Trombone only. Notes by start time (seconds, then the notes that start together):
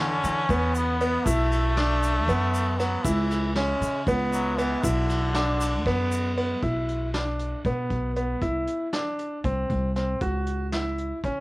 Already playing: C#4
0.75 B3
1.26 A3
2.79 F#3
3.04 E3
3.56 G#3
4.32 F#3
4.59 E3
4.84 D3